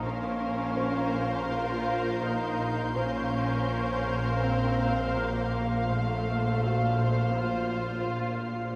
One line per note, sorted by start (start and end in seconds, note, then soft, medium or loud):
0.03 2.92 A#1 medium
0.03 2.93 A#1 soft
0.03 0.25 A#2 medium
0.03 2.93 A#2 soft
0.03 1.50 C#4 medium
0.03 2.93 A#4 soft
0.03 2.93 C5 soft
0.03 2.93 F5 soft
0.03 5.49 C6 soft
0.40 0.62 A#3 soft
0.77 0.99 A#3 soft
0.77 2.93 C5 soft
0.77 5.50 G6 soft
1.13 1.35 A#2 medium
1.50 1.72 A#2 soft
1.50 2.24 F4 medium
1.87 2.09 A#2 soft
2.23 2.45 A#2 medium
2.23 2.97 D#4 medium
2.60 2.82 A#2 soft
2.96 8.76 A#1 soft
2.96 8.76 A#1 medium
2.96 3.18 A#2 medium
2.96 8.76 A#2 soft
2.96 4.41 C#4 medium
2.96 5.85 A#4 soft
2.96 5.12 C5 soft
2.96 5.88 C5 soft
2.96 8.76 F5 soft
3.33 3.55 A#3 soft
3.69 3.91 A#3 soft
4.06 4.28 A#2 medium
4.43 4.65 A#2 soft
4.43 5.16 C4 medium
4.80 5.02 A#2 soft
5.17 5.38 A#2 medium
5.17 5.90 A#3 medium
5.17 7.32 F6 soft
5.53 5.75 A#2 soft
5.89 6.12 A#2 medium
5.89 7.33 A3 medium
5.89 8.76 C5 soft
5.89 8.76 F6 soft
5.89 8.76 C7 soft
6.26 6.48 A#3 soft
6.62 6.85 A#3 soft
6.62 8.76 F#4 soft
6.62 8.76 F5 soft
6.99 7.21 A#2 medium
7.35 7.57 A#2 soft
7.35 8.76 F4 medium
7.73 7.95 A#2 soft
8.09 8.31 A#2 soft
8.45 8.67 A#2 soft